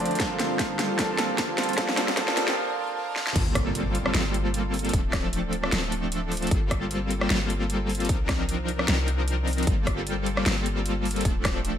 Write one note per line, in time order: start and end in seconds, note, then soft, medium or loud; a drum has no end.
0.00 0.18 D2 medium
0.00 1.74 D3 medium
0.00 0.18 F3 medium
0.00 0.18 A3 medium
0.00 0.22 A3 medium
0.00 0.18 C4 medium
0.00 0.20 C4 medium
0.00 0.18 D4 medium
0.00 0.21 D4 medium
0.00 3.32 F4 medium
0.00 0.18 A4 medium
0.00 0.21 A4 loud
0.00 1.74 C5 medium
0.00 0.18 D5 medium
0.00 closed hi-hat soft
0.00 riser medium
0.06 closed hi-hat medium
0.11 closed hi-hat soft
0.15 0.95 F3 medium
0.15 0.96 A#3 medium
0.15 closed hi-hat medium
0.20 1.76 G2 medium
0.20 0.97 G3 medium
0.20 3.32 A#3 medium
0.20 0.97 A#3 medium
0.20 0.97 C4 medium
0.20 0.98 D4 medium
0.20 0.97 F4 medium
0.20 1.76 A4 medium
0.20 0.97 A4 medium
0.20 0.98 A4 medium
0.20 kick medium
0.20 snare medium
0.20 closed hi-hat medium
0.40 snare medium
0.40 closed hi-hat medium
0.59 kick medium
0.59 snare medium
0.59 closed hi-hat medium
0.79 snare medium
0.79 closed hi-hat medium
0.97 1.74 F3 medium
0.97 1.76 G3 medium
0.97 1.75 A#3 medium
0.97 1.76 A#3 medium
0.97 1.76 C4 medium
0.97 1.77 D4 medium
0.97 1.76 F4 medium
0.97 1.76 A4 medium
0.97 kick loud
0.97 snare medium
0.97 closed hi-hat medium
1.01 1.77 A4 loud
1.18 snare medium
1.18 closed hi-hat medium
1.38 kick loud
1.38 snare medium
1.38 closed hi-hat medium
1.58 snare medium
1.58 closed hi-hat soft
1.63 closed hi-hat medium
1.69 closed hi-hat soft
1.73 2.14 F3 medium
1.73 2.15 A#3 medium
1.73 closed hi-hat medium
1.77 3.34 C3 medium
1.77 3.34 D#3 medium
1.77 2.16 G3 medium
1.77 2.16 A#3 medium
1.77 2.16 C4 medium
1.77 2.16 D4 medium
1.77 2.16 F4 medium
1.77 2.16 A4 medium
1.77 2.17 A4 medium
1.77 3.34 D5 medium
1.77 kick loud
1.77 snare medium
1.77 closed hi-hat medium
1.89 snare medium
1.97 snare loud
1.97 closed hi-hat medium
2.08 snare medium
2.15 2.54 F3 medium
2.15 2.55 G3 medium
2.15 2.55 A#3 medium
2.15 2.55 C4 medium
2.15 2.56 D4 medium
2.15 2.55 F4 medium
2.15 2.55 A4 medium
2.15 kick loud
2.15 snare loud
2.15 closed hi-hat medium
2.19 2.56 A4 loud
2.28 snare medium
2.37 snare loud
2.37 closed hi-hat medium
2.48 snare medium
3.16 snare medium
3.27 snare medium
3.36 4.13 G1 medium
3.36 4.12 G3 medium
3.36 4.12 A#3 medium
3.36 4.12 C4 medium
3.36 4.12 F4 medium
3.36 4.12 A4 medium
3.36 kick loud
3.36 closed hi-hat medium
3.36 crash loud
3.36 impact medium
3.55 kick loud
3.55 cross-stick medium
3.55 closed hi-hat medium
3.75 closed hi-hat medium
3.95 closed hi-hat medium
4.06 cross-stick medium
4.14 4.92 G1 loud
4.14 4.91 G3 medium
4.14 4.91 A#3 medium
4.14 4.91 C4 medium
4.14 4.91 F4 medium
4.14 4.91 A4 medium
4.14 snare loud
4.14 closed hi-hat medium
4.34 closed hi-hat medium
4.54 closed hi-hat medium
4.74 open hi-hat medium
4.79 closed hi-hat medium
4.85 closed hi-hat medium
4.89 closed hi-hat medium
4.93 5.71 D1 medium
4.93 5.70 F3 medium
4.93 5.70 A3 medium
4.93 5.70 C4 medium
4.93 5.70 D4 medium
4.93 5.70 A4 medium
4.93 kick loud
4.93 closed hi-hat medium
5.13 kick loud
5.13 cross-stick medium
5.13 snare medium
5.13 closed hi-hat medium
5.33 closed hi-hat medium
5.53 closed hi-hat medium
5.64 cross-stick medium
5.72 6.50 D1 medium
5.72 6.49 F3 medium
5.72 6.49 A3 medium
5.72 6.49 C4 medium
5.72 6.49 D4 medium
5.72 6.49 A4 medium
5.72 snare loud
5.72 closed hi-hat medium
5.92 closed hi-hat medium
6.12 closed hi-hat medium
6.32 open hi-hat medium
6.37 closed hi-hat medium
6.42 closed hi-hat soft
6.47 closed hi-hat medium
6.51 7.29 G1 loud
6.51 7.28 G3 medium
6.51 7.28 A#3 medium
6.51 7.28 C4 medium
6.51 7.28 F4 medium
6.51 7.28 A4 medium
6.51 kick loud
6.51 closed hi-hat medium
6.71 kick loud
6.71 cross-stick medium
6.71 closed hi-hat medium
6.91 closed hi-hat medium
7.11 closed hi-hat medium
7.21 cross-stick medium
7.30 8.11 G1 loud
7.30 8.07 G3 medium
7.30 8.07 A#3 medium
7.30 8.07 C4 medium
7.30 8.07 F4 medium
7.30 8.07 A4 medium
7.30 snare loud
7.30 closed hi-hat medium
7.50 closed hi-hat medium
7.70 closed hi-hat medium
7.89 open hi-hat medium
7.95 closed hi-hat medium
8.00 closed hi-hat medium
8.05 closed hi-hat medium
8.09 8.86 C2 loud
8.09 8.86 F3 medium
8.09 8.86 C4 medium
8.09 8.86 D4 medium
8.09 8.86 D#4 medium
8.09 8.86 A#4 medium
8.09 kick loud
8.09 closed hi-hat medium
8.29 kick loud
8.29 cross-stick medium
8.29 snare medium
8.29 closed hi-hat medium
8.49 closed hi-hat medium
8.68 closed hi-hat medium
8.79 cross-stick medium
8.88 9.65 C2 loud
8.88 9.65 F3 medium
8.88 9.65 C4 medium
8.88 9.65 D4 medium
8.88 9.65 D#4 medium
8.88 9.65 A#4 medium
8.88 snare loud
8.88 closed hi-hat medium
9.08 closed hi-hat medium
9.28 closed hi-hat medium
9.47 open hi-hat medium
9.53 closed hi-hat medium
9.58 closed hi-hat soft
9.63 closed hi-hat medium
9.67 10.44 G1 loud
9.67 10.44 G3 medium
9.67 10.44 A#3 medium
9.67 10.44 C4 medium
9.67 10.44 F4 medium
9.67 10.44 A4 medium
9.67 kick loud
9.67 closed hi-hat medium
9.87 kick loud
9.87 cross-stick medium
9.87 closed hi-hat medium
10.07 closed hi-hat medium
10.26 closed hi-hat medium
10.37 cross-stick medium
10.46 11.23 G1 medium
10.46 11.23 G3 medium
10.46 11.23 A#3 medium
10.46 11.23 C4 medium
10.46 11.23 F4 medium
10.46 11.23 A4 medium
10.46 snare loud
10.46 closed hi-hat medium
10.66 closed hi-hat medium
10.86 closed hi-hat medium
11.05 open hi-hat medium
11.11 closed hi-hat medium
11.16 closed hi-hat soft
11.21 closed hi-hat medium
11.25 11.78 D1 loud
11.25 11.78 F3 medium
11.25 11.78 A3 medium
11.25 11.78 C4 medium
11.25 11.78 D4 medium
11.25 11.78 A4 medium
11.25 kick loud
11.25 closed hi-hat medium
11.45 kick loud
11.45 cross-stick medium
11.45 snare medium
11.45 closed hi-hat medium
11.65 closed hi-hat medium